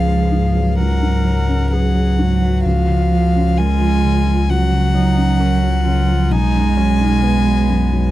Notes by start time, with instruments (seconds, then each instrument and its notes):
Already playing: felt piano C#2 G#2 G#3 C#4 B4, sub bass C#2, cello F3, viola G#4, violin F5
0.07 felt piano G#3
0.31 felt piano G#2
0.55 felt piano F#3
0.79 felt piano C#2, cello F#3, viola A#4, violin F#5
1.02 felt piano G#2
1.25 felt piano F#3
1.48 felt piano C#4
1.71 cello F#3, viola G#4, felt piano B4, violin F#5
1.94 felt piano F#3
2.18 felt piano G#2, viola F#4
2.42 felt piano F#3
2.64 felt piano C#2, sub bass C#2, cello F3, violin F5
2.88 felt piano C#3
3.11 felt piano F3
3.35 felt piano C#4
3.58 cello G#3, viola F4, felt piano A#4, violin G#5
3.81 felt piano F3
4.04 felt piano C#3
4.26 felt piano F3
4.49 felt piano C#2, cello F#3, viola F#4, violin F#5
4.72 felt piano C#3
4.94 felt piano F#3, viola D#4
5.16 felt piano C#4
5.39 viola C#4, felt piano A#4
5.62 felt piano F#3
5.86 felt piano C#3, viola F4
6.08 felt piano F3
6.30 felt piano B1, sub bass B1, cello G#3, viola D#4, violin G#5
6.55 felt piano F#2
6.77 felt piano F#3, viola C#4
7.01 felt piano D#4
7.22 viola B3, felt piano B4
7.45 felt piano F#3
7.68 felt piano F#2
7.92 felt piano F#3